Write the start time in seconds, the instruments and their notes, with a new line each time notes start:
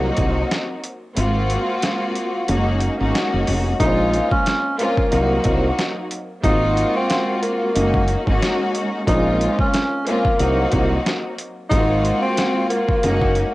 Already playing: string section F#3 A#3 C4 D#4 F#4
0.17 fretless electric bass C2, kick, closed hi-hat
0.51 snare, closed hi-hat
0.84 closed hi-hat
1.15 fretless electric bass G#1, string section G#3 A#3 C4 F4 F#4, closed hi-hat
1.50 closed hi-hat
1.82 snare, closed hi-hat
2.15 closed hi-hat
2.47 fretless electric bass F#1, string section G#3 A#3 C#4 D#4 F#4, closed hi-hat
2.80 closed hi-hat
2.97 fretless electric bass G#1, string section G#3 A#3 C#4 D#4 F#4
3.15 snare, closed hi-hat
3.34 fretless electric bass F#1
3.47 fretless electric bass F1, open hi-hat
3.79 fretless electric bass A#1, string section G#3 A#3 C4 C#4 F4, tenor saxophone D#4, kick, closed hi-hat
4.14 closed hi-hat
4.31 tenor saxophone C#4, kick
4.46 snare, closed hi-hat
4.78 string section G#3 A#3 C4 C#4 F4, tenor saxophone A#3, closed hi-hat
4.97 kick
5.09 fretless electric bass C2, string section F#3 A#3 C4 D#4 F#4, closed hi-hat
5.44 fretless electric bass C2, kick, closed hi-hat
5.79 snare, closed hi-hat
6.11 closed hi-hat
6.42 fretless electric bass G#1, string section G#3 A#3 C4 F4 F#4, tenor saxophone D#4, kick, closed hi-hat
6.77 closed hi-hat
6.96 tenor saxophone C4
7.10 snare, closed hi-hat
7.42 tenor saxophone A#3, closed hi-hat
7.74 fretless electric bass F#1, string section G#3 A#3 C#4 D#4 F#4, closed hi-hat
7.94 kick
8.08 closed hi-hat
8.25 fretless electric bass G#1, string section G#3 A#3 C#4 D#4 F#4, kick
8.42 snare, closed hi-hat
8.75 closed hi-hat
9.07 fretless electric bass A#1, string section G#3 A#3 C4 C#4 F4, tenor saxophone D#4, kick, closed hi-hat
9.41 closed hi-hat
9.59 tenor saxophone C#4, kick
9.74 snare, closed hi-hat
10.06 string section G#3 A#3 C4 C#4 F4, tenor saxophone A#3, closed hi-hat
10.25 kick
10.37 fretless electric bass C2, string section F#3 A#3 C4 D#4 F#4, closed hi-hat
10.72 fretless electric bass C2, kick, closed hi-hat
11.06 snare, closed hi-hat
11.38 closed hi-hat
11.69 fretless electric bass G#1, string section G#3 A#3 C4 F4 F#4, tenor saxophone D#4, kick, closed hi-hat
12.05 closed hi-hat
12.22 tenor saxophone C4
12.37 snare, closed hi-hat
12.69 tenor saxophone A#3, closed hi-hat
12.89 kick
13.02 fretless electric bass F#1, string section G#3 A#3 C#4 D#4 F#4, closed hi-hat
13.21 kick
13.35 closed hi-hat